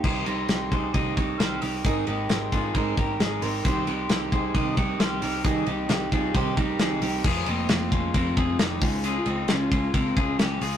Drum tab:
CC |x-------|--------|--------|--------|
RD |-xxxxxxx|xxxxxxxx|xxxxxxxx|xxxxxxxx|
HH |-------o|p------o|p------o|p------o|
SD |--o---o-|--o---o-|--o---o-|--o---o-|
BD |o--ooo--|o--ooo--|o--ooo--|o--ooo--|

CC |x-------|--------|
RD |-xxxxxxx|xxxxxxxx|
HH |-------o|p------o|
SD |--o---o-|--o---o-|
BD |o--ooo-o|---ooo--|